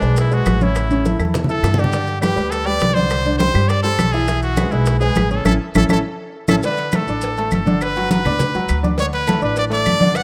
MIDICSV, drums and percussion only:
0, 0, Header, 1, 2, 480
1, 0, Start_track
1, 0, Key_signature, 2, "major"
1, 0, Tempo, 293686
1, 1244, Time_signature, 4, 2, 24, 8
1, 16722, End_track
2, 0, Start_track
2, 0, Title_t, "Drums"
2, 32, Note_on_c, 9, 70, 29
2, 53, Note_on_c, 9, 60, 34
2, 195, Note_off_c, 9, 70, 0
2, 217, Note_off_c, 9, 60, 0
2, 270, Note_on_c, 9, 70, 75
2, 287, Note_on_c, 9, 63, 35
2, 294, Note_on_c, 9, 60, 72
2, 433, Note_off_c, 9, 70, 0
2, 451, Note_off_c, 9, 63, 0
2, 457, Note_off_c, 9, 60, 0
2, 515, Note_on_c, 9, 70, 28
2, 525, Note_on_c, 9, 63, 36
2, 535, Note_on_c, 9, 60, 33
2, 678, Note_off_c, 9, 70, 0
2, 689, Note_off_c, 9, 63, 0
2, 699, Note_off_c, 9, 60, 0
2, 748, Note_on_c, 9, 70, 65
2, 756, Note_on_c, 9, 75, 67
2, 763, Note_on_c, 9, 63, 82
2, 766, Note_on_c, 9, 60, 64
2, 766, Note_on_c, 9, 61, 79
2, 912, Note_off_c, 9, 70, 0
2, 920, Note_off_c, 9, 75, 0
2, 927, Note_off_c, 9, 63, 0
2, 929, Note_off_c, 9, 60, 0
2, 929, Note_off_c, 9, 61, 0
2, 995, Note_on_c, 9, 70, 31
2, 1002, Note_on_c, 9, 63, 67
2, 1158, Note_off_c, 9, 70, 0
2, 1165, Note_off_c, 9, 63, 0
2, 1229, Note_on_c, 9, 70, 67
2, 1233, Note_on_c, 9, 75, 63
2, 1244, Note_on_c, 9, 60, 64
2, 1252, Note_on_c, 9, 63, 34
2, 1393, Note_off_c, 9, 70, 0
2, 1397, Note_off_c, 9, 75, 0
2, 1408, Note_off_c, 9, 60, 0
2, 1415, Note_off_c, 9, 63, 0
2, 1476, Note_on_c, 9, 63, 33
2, 1480, Note_on_c, 9, 70, 28
2, 1639, Note_off_c, 9, 63, 0
2, 1643, Note_off_c, 9, 70, 0
2, 1722, Note_on_c, 9, 70, 67
2, 1725, Note_on_c, 9, 60, 61
2, 1735, Note_on_c, 9, 63, 73
2, 1886, Note_off_c, 9, 70, 0
2, 1889, Note_off_c, 9, 60, 0
2, 1899, Note_off_c, 9, 63, 0
2, 1954, Note_on_c, 9, 75, 70
2, 1955, Note_on_c, 9, 70, 28
2, 1965, Note_on_c, 9, 60, 33
2, 2042, Note_on_c, 9, 63, 70
2, 2118, Note_off_c, 9, 70, 0
2, 2118, Note_off_c, 9, 75, 0
2, 2128, Note_off_c, 9, 60, 0
2, 2193, Note_on_c, 9, 60, 68
2, 2202, Note_on_c, 9, 70, 68
2, 2205, Note_off_c, 9, 63, 0
2, 2205, Note_on_c, 9, 64, 80
2, 2356, Note_off_c, 9, 60, 0
2, 2358, Note_off_c, 9, 64, 0
2, 2358, Note_on_c, 9, 64, 84
2, 2366, Note_off_c, 9, 70, 0
2, 2434, Note_on_c, 9, 70, 30
2, 2441, Note_on_c, 9, 60, 33
2, 2522, Note_off_c, 9, 64, 0
2, 2597, Note_off_c, 9, 70, 0
2, 2605, Note_off_c, 9, 60, 0
2, 2672, Note_on_c, 9, 75, 65
2, 2680, Note_on_c, 9, 64, 72
2, 2682, Note_on_c, 9, 60, 69
2, 2682, Note_on_c, 9, 61, 82
2, 2687, Note_on_c, 9, 70, 67
2, 2836, Note_off_c, 9, 75, 0
2, 2844, Note_off_c, 9, 64, 0
2, 2845, Note_off_c, 9, 60, 0
2, 2845, Note_off_c, 9, 61, 0
2, 2845, Note_on_c, 9, 64, 88
2, 2850, Note_off_c, 9, 70, 0
2, 2913, Note_on_c, 9, 60, 34
2, 2920, Note_on_c, 9, 70, 30
2, 3008, Note_off_c, 9, 64, 0
2, 3008, Note_on_c, 9, 64, 86
2, 3077, Note_off_c, 9, 60, 0
2, 3083, Note_off_c, 9, 70, 0
2, 3147, Note_on_c, 9, 70, 66
2, 3162, Note_on_c, 9, 60, 64
2, 3168, Note_on_c, 9, 63, 33
2, 3171, Note_off_c, 9, 64, 0
2, 3310, Note_off_c, 9, 70, 0
2, 3326, Note_off_c, 9, 60, 0
2, 3332, Note_off_c, 9, 63, 0
2, 3385, Note_on_c, 9, 70, 27
2, 3409, Note_on_c, 9, 60, 34
2, 3409, Note_on_c, 9, 63, 34
2, 3548, Note_off_c, 9, 70, 0
2, 3572, Note_off_c, 9, 63, 0
2, 3573, Note_off_c, 9, 60, 0
2, 3632, Note_on_c, 9, 75, 61
2, 3636, Note_on_c, 9, 70, 70
2, 3649, Note_on_c, 9, 60, 61
2, 3651, Note_on_c, 9, 63, 96
2, 3795, Note_off_c, 9, 75, 0
2, 3799, Note_off_c, 9, 70, 0
2, 3813, Note_off_c, 9, 60, 0
2, 3815, Note_off_c, 9, 63, 0
2, 3878, Note_on_c, 9, 60, 33
2, 3878, Note_on_c, 9, 70, 29
2, 4041, Note_off_c, 9, 60, 0
2, 4041, Note_off_c, 9, 70, 0
2, 4119, Note_on_c, 9, 70, 69
2, 4123, Note_on_c, 9, 60, 70
2, 4135, Note_on_c, 9, 63, 35
2, 4282, Note_off_c, 9, 70, 0
2, 4287, Note_off_c, 9, 60, 0
2, 4298, Note_off_c, 9, 63, 0
2, 4354, Note_on_c, 9, 70, 30
2, 4364, Note_on_c, 9, 60, 33
2, 4385, Note_on_c, 9, 63, 34
2, 4517, Note_off_c, 9, 70, 0
2, 4527, Note_off_c, 9, 60, 0
2, 4549, Note_off_c, 9, 63, 0
2, 4574, Note_on_c, 9, 70, 70
2, 4602, Note_on_c, 9, 75, 60
2, 4605, Note_on_c, 9, 60, 63
2, 4605, Note_on_c, 9, 61, 74
2, 4613, Note_on_c, 9, 63, 77
2, 4737, Note_off_c, 9, 70, 0
2, 4766, Note_off_c, 9, 75, 0
2, 4768, Note_off_c, 9, 60, 0
2, 4768, Note_off_c, 9, 61, 0
2, 4777, Note_off_c, 9, 63, 0
2, 4836, Note_on_c, 9, 70, 30
2, 4859, Note_on_c, 9, 63, 73
2, 5000, Note_off_c, 9, 70, 0
2, 5023, Note_off_c, 9, 63, 0
2, 5068, Note_on_c, 9, 70, 64
2, 5078, Note_on_c, 9, 75, 66
2, 5081, Note_on_c, 9, 60, 67
2, 5094, Note_on_c, 9, 63, 33
2, 5231, Note_off_c, 9, 70, 0
2, 5242, Note_off_c, 9, 75, 0
2, 5245, Note_off_c, 9, 60, 0
2, 5258, Note_off_c, 9, 63, 0
2, 5309, Note_on_c, 9, 70, 28
2, 5339, Note_on_c, 9, 63, 34
2, 5472, Note_off_c, 9, 70, 0
2, 5502, Note_off_c, 9, 63, 0
2, 5546, Note_on_c, 9, 70, 70
2, 5560, Note_on_c, 9, 60, 64
2, 5562, Note_on_c, 9, 63, 98
2, 5709, Note_off_c, 9, 70, 0
2, 5724, Note_off_c, 9, 60, 0
2, 5725, Note_off_c, 9, 63, 0
2, 5798, Note_on_c, 9, 70, 29
2, 5803, Note_on_c, 9, 63, 33
2, 5803, Note_on_c, 9, 75, 69
2, 5809, Note_on_c, 9, 60, 33
2, 5961, Note_off_c, 9, 70, 0
2, 5967, Note_off_c, 9, 63, 0
2, 5967, Note_off_c, 9, 75, 0
2, 5972, Note_off_c, 9, 60, 0
2, 6035, Note_on_c, 9, 70, 66
2, 6045, Note_on_c, 9, 63, 35
2, 6048, Note_on_c, 9, 60, 70
2, 6199, Note_off_c, 9, 70, 0
2, 6208, Note_off_c, 9, 63, 0
2, 6212, Note_off_c, 9, 60, 0
2, 6275, Note_on_c, 9, 70, 29
2, 6281, Note_on_c, 9, 60, 33
2, 6285, Note_on_c, 9, 63, 36
2, 6438, Note_off_c, 9, 70, 0
2, 6445, Note_off_c, 9, 60, 0
2, 6448, Note_off_c, 9, 63, 0
2, 6516, Note_on_c, 9, 75, 65
2, 6519, Note_on_c, 9, 60, 67
2, 6519, Note_on_c, 9, 61, 83
2, 6519, Note_on_c, 9, 63, 79
2, 6527, Note_on_c, 9, 70, 75
2, 6679, Note_off_c, 9, 75, 0
2, 6682, Note_off_c, 9, 63, 0
2, 6683, Note_off_c, 9, 60, 0
2, 6683, Note_off_c, 9, 61, 0
2, 6691, Note_off_c, 9, 70, 0
2, 6748, Note_on_c, 9, 70, 30
2, 6769, Note_on_c, 9, 60, 35
2, 6912, Note_off_c, 9, 70, 0
2, 6933, Note_off_c, 9, 60, 0
2, 6991, Note_on_c, 9, 63, 33
2, 6993, Note_on_c, 9, 70, 66
2, 7001, Note_on_c, 9, 60, 64
2, 7154, Note_off_c, 9, 63, 0
2, 7156, Note_off_c, 9, 70, 0
2, 7164, Note_off_c, 9, 60, 0
2, 7229, Note_on_c, 9, 70, 30
2, 7234, Note_on_c, 9, 63, 32
2, 7240, Note_on_c, 9, 60, 38
2, 7393, Note_off_c, 9, 70, 0
2, 7397, Note_off_c, 9, 63, 0
2, 7403, Note_off_c, 9, 60, 0
2, 7462, Note_on_c, 9, 70, 70
2, 7474, Note_on_c, 9, 63, 99
2, 7478, Note_on_c, 9, 60, 65
2, 7479, Note_on_c, 9, 75, 64
2, 7626, Note_off_c, 9, 70, 0
2, 7638, Note_off_c, 9, 63, 0
2, 7642, Note_off_c, 9, 60, 0
2, 7643, Note_off_c, 9, 75, 0
2, 7707, Note_on_c, 9, 70, 30
2, 7722, Note_on_c, 9, 60, 32
2, 7870, Note_off_c, 9, 70, 0
2, 7885, Note_off_c, 9, 60, 0
2, 7940, Note_on_c, 9, 70, 76
2, 7963, Note_on_c, 9, 60, 70
2, 7963, Note_on_c, 9, 63, 35
2, 8104, Note_off_c, 9, 70, 0
2, 8126, Note_off_c, 9, 60, 0
2, 8126, Note_off_c, 9, 63, 0
2, 8183, Note_on_c, 9, 70, 28
2, 8201, Note_on_c, 9, 63, 36
2, 8205, Note_on_c, 9, 60, 34
2, 8347, Note_off_c, 9, 70, 0
2, 8365, Note_off_c, 9, 63, 0
2, 8369, Note_off_c, 9, 60, 0
2, 8420, Note_on_c, 9, 70, 75
2, 8430, Note_on_c, 9, 63, 86
2, 8446, Note_on_c, 9, 60, 67
2, 8446, Note_on_c, 9, 61, 81
2, 8453, Note_on_c, 9, 75, 65
2, 8583, Note_off_c, 9, 70, 0
2, 8594, Note_off_c, 9, 63, 0
2, 8610, Note_off_c, 9, 60, 0
2, 8610, Note_off_c, 9, 61, 0
2, 8616, Note_off_c, 9, 75, 0
2, 8668, Note_on_c, 9, 70, 28
2, 8832, Note_off_c, 9, 70, 0
2, 8912, Note_on_c, 9, 60, 92
2, 8912, Note_on_c, 9, 70, 95
2, 8917, Note_on_c, 9, 63, 95
2, 8920, Note_on_c, 9, 75, 88
2, 9075, Note_off_c, 9, 60, 0
2, 9075, Note_off_c, 9, 70, 0
2, 9080, Note_off_c, 9, 63, 0
2, 9083, Note_off_c, 9, 75, 0
2, 9390, Note_on_c, 9, 70, 95
2, 9404, Note_on_c, 9, 63, 103
2, 9404, Note_on_c, 9, 75, 96
2, 9414, Note_on_c, 9, 60, 100
2, 9554, Note_off_c, 9, 70, 0
2, 9567, Note_off_c, 9, 63, 0
2, 9567, Note_off_c, 9, 75, 0
2, 9577, Note_off_c, 9, 60, 0
2, 9628, Note_on_c, 9, 70, 101
2, 9631, Note_on_c, 9, 63, 94
2, 9644, Note_on_c, 9, 75, 96
2, 9655, Note_on_c, 9, 60, 95
2, 9791, Note_off_c, 9, 70, 0
2, 9795, Note_off_c, 9, 63, 0
2, 9807, Note_off_c, 9, 75, 0
2, 9818, Note_off_c, 9, 60, 0
2, 10589, Note_on_c, 9, 70, 97
2, 10595, Note_on_c, 9, 63, 100
2, 10604, Note_on_c, 9, 75, 98
2, 10608, Note_on_c, 9, 60, 99
2, 10753, Note_off_c, 9, 70, 0
2, 10759, Note_off_c, 9, 63, 0
2, 10767, Note_off_c, 9, 75, 0
2, 10772, Note_off_c, 9, 60, 0
2, 10834, Note_on_c, 9, 70, 74
2, 10841, Note_on_c, 9, 63, 37
2, 10851, Note_on_c, 9, 56, 109
2, 10998, Note_off_c, 9, 70, 0
2, 11005, Note_off_c, 9, 63, 0
2, 11014, Note_off_c, 9, 56, 0
2, 11063, Note_on_c, 9, 70, 31
2, 11083, Note_on_c, 9, 63, 35
2, 11089, Note_on_c, 9, 56, 71
2, 11227, Note_off_c, 9, 70, 0
2, 11246, Note_off_c, 9, 63, 0
2, 11252, Note_off_c, 9, 56, 0
2, 11307, Note_on_c, 9, 70, 75
2, 11323, Note_on_c, 9, 75, 68
2, 11326, Note_on_c, 9, 63, 104
2, 11341, Note_on_c, 9, 56, 71
2, 11471, Note_off_c, 9, 70, 0
2, 11486, Note_off_c, 9, 75, 0
2, 11490, Note_off_c, 9, 63, 0
2, 11505, Note_off_c, 9, 56, 0
2, 11568, Note_on_c, 9, 70, 32
2, 11573, Note_on_c, 9, 63, 34
2, 11731, Note_off_c, 9, 70, 0
2, 11736, Note_off_c, 9, 63, 0
2, 11791, Note_on_c, 9, 70, 75
2, 11812, Note_on_c, 9, 63, 38
2, 11828, Note_on_c, 9, 56, 120
2, 11954, Note_off_c, 9, 70, 0
2, 11975, Note_off_c, 9, 63, 0
2, 11991, Note_off_c, 9, 56, 0
2, 12044, Note_on_c, 9, 70, 30
2, 12054, Note_on_c, 9, 63, 37
2, 12071, Note_on_c, 9, 56, 65
2, 12207, Note_off_c, 9, 70, 0
2, 12217, Note_off_c, 9, 63, 0
2, 12235, Note_off_c, 9, 56, 0
2, 12276, Note_on_c, 9, 70, 72
2, 12290, Note_on_c, 9, 75, 66
2, 12291, Note_on_c, 9, 63, 88
2, 12310, Note_on_c, 9, 56, 75
2, 12439, Note_off_c, 9, 70, 0
2, 12453, Note_off_c, 9, 75, 0
2, 12455, Note_off_c, 9, 63, 0
2, 12474, Note_off_c, 9, 56, 0
2, 12527, Note_on_c, 9, 70, 32
2, 12540, Note_on_c, 9, 63, 90
2, 12690, Note_off_c, 9, 70, 0
2, 12704, Note_off_c, 9, 63, 0
2, 12764, Note_on_c, 9, 70, 75
2, 12771, Note_on_c, 9, 75, 69
2, 12773, Note_on_c, 9, 63, 34
2, 12783, Note_on_c, 9, 56, 108
2, 12928, Note_off_c, 9, 70, 0
2, 12935, Note_off_c, 9, 75, 0
2, 12937, Note_off_c, 9, 63, 0
2, 12946, Note_off_c, 9, 56, 0
2, 13002, Note_on_c, 9, 70, 30
2, 13017, Note_on_c, 9, 63, 36
2, 13028, Note_on_c, 9, 56, 75
2, 13166, Note_off_c, 9, 70, 0
2, 13181, Note_off_c, 9, 63, 0
2, 13192, Note_off_c, 9, 56, 0
2, 13252, Note_on_c, 9, 63, 100
2, 13254, Note_on_c, 9, 70, 74
2, 13261, Note_on_c, 9, 56, 74
2, 13415, Note_off_c, 9, 63, 0
2, 13417, Note_off_c, 9, 70, 0
2, 13424, Note_off_c, 9, 56, 0
2, 13487, Note_on_c, 9, 75, 68
2, 13493, Note_on_c, 9, 63, 35
2, 13493, Note_on_c, 9, 64, 87
2, 13497, Note_on_c, 9, 70, 31
2, 13499, Note_on_c, 9, 56, 67
2, 13650, Note_off_c, 9, 75, 0
2, 13657, Note_off_c, 9, 63, 0
2, 13657, Note_off_c, 9, 64, 0
2, 13661, Note_off_c, 9, 70, 0
2, 13663, Note_off_c, 9, 56, 0
2, 13717, Note_on_c, 9, 56, 113
2, 13727, Note_on_c, 9, 70, 76
2, 13729, Note_on_c, 9, 63, 40
2, 13729, Note_on_c, 9, 64, 83
2, 13881, Note_off_c, 9, 56, 0
2, 13890, Note_off_c, 9, 70, 0
2, 13892, Note_off_c, 9, 63, 0
2, 13892, Note_off_c, 9, 64, 0
2, 13962, Note_on_c, 9, 70, 32
2, 13971, Note_on_c, 9, 63, 37
2, 14126, Note_off_c, 9, 70, 0
2, 14134, Note_off_c, 9, 63, 0
2, 14199, Note_on_c, 9, 56, 76
2, 14199, Note_on_c, 9, 70, 75
2, 14206, Note_on_c, 9, 75, 66
2, 14220, Note_on_c, 9, 63, 37
2, 14362, Note_off_c, 9, 56, 0
2, 14362, Note_off_c, 9, 70, 0
2, 14370, Note_off_c, 9, 75, 0
2, 14384, Note_off_c, 9, 63, 0
2, 14447, Note_on_c, 9, 70, 33
2, 14457, Note_on_c, 9, 63, 94
2, 14610, Note_off_c, 9, 70, 0
2, 14620, Note_off_c, 9, 63, 0
2, 14672, Note_on_c, 9, 56, 105
2, 14686, Note_on_c, 9, 70, 75
2, 14695, Note_on_c, 9, 63, 35
2, 14835, Note_off_c, 9, 56, 0
2, 14849, Note_off_c, 9, 70, 0
2, 14859, Note_off_c, 9, 63, 0
2, 14924, Note_on_c, 9, 56, 74
2, 14926, Note_on_c, 9, 70, 28
2, 14934, Note_on_c, 9, 63, 39
2, 15087, Note_off_c, 9, 56, 0
2, 15090, Note_off_c, 9, 70, 0
2, 15098, Note_off_c, 9, 63, 0
2, 15152, Note_on_c, 9, 70, 73
2, 15160, Note_on_c, 9, 56, 77
2, 15161, Note_on_c, 9, 75, 69
2, 15181, Note_on_c, 9, 63, 103
2, 15315, Note_off_c, 9, 70, 0
2, 15323, Note_off_c, 9, 56, 0
2, 15325, Note_off_c, 9, 75, 0
2, 15345, Note_off_c, 9, 63, 0
2, 15388, Note_on_c, 9, 70, 29
2, 15413, Note_on_c, 9, 63, 36
2, 15552, Note_off_c, 9, 70, 0
2, 15576, Note_off_c, 9, 63, 0
2, 15628, Note_on_c, 9, 70, 74
2, 15639, Note_on_c, 9, 56, 120
2, 15655, Note_on_c, 9, 63, 37
2, 15792, Note_off_c, 9, 70, 0
2, 15802, Note_off_c, 9, 56, 0
2, 15818, Note_off_c, 9, 63, 0
2, 15872, Note_on_c, 9, 70, 31
2, 15879, Note_on_c, 9, 56, 70
2, 15888, Note_on_c, 9, 63, 36
2, 16036, Note_off_c, 9, 70, 0
2, 16043, Note_off_c, 9, 56, 0
2, 16052, Note_off_c, 9, 63, 0
2, 16108, Note_on_c, 9, 70, 74
2, 16116, Note_on_c, 9, 75, 69
2, 16122, Note_on_c, 9, 56, 70
2, 16126, Note_on_c, 9, 63, 84
2, 16271, Note_off_c, 9, 70, 0
2, 16280, Note_off_c, 9, 75, 0
2, 16286, Note_off_c, 9, 56, 0
2, 16289, Note_off_c, 9, 63, 0
2, 16359, Note_on_c, 9, 63, 91
2, 16365, Note_on_c, 9, 70, 32
2, 16522, Note_off_c, 9, 63, 0
2, 16529, Note_off_c, 9, 70, 0
2, 16588, Note_on_c, 9, 56, 108
2, 16592, Note_on_c, 9, 75, 64
2, 16597, Note_on_c, 9, 70, 70
2, 16605, Note_on_c, 9, 63, 37
2, 16722, Note_off_c, 9, 56, 0
2, 16722, Note_off_c, 9, 63, 0
2, 16722, Note_off_c, 9, 70, 0
2, 16722, Note_off_c, 9, 75, 0
2, 16722, End_track
0, 0, End_of_file